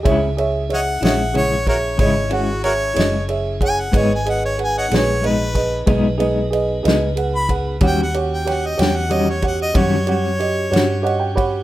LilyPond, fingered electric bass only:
\new Staff \with { instrumentName = "Fingered electric bass" } { \clef bass \time 12/8 \key gis \minor \tempo 4. = 62 cis,4. ais,,4. gis,,4. fis,,4. | gis,,4. ais,,4. b,,4. cis,4. | dis,4. e,4. fis,4. g,4. | }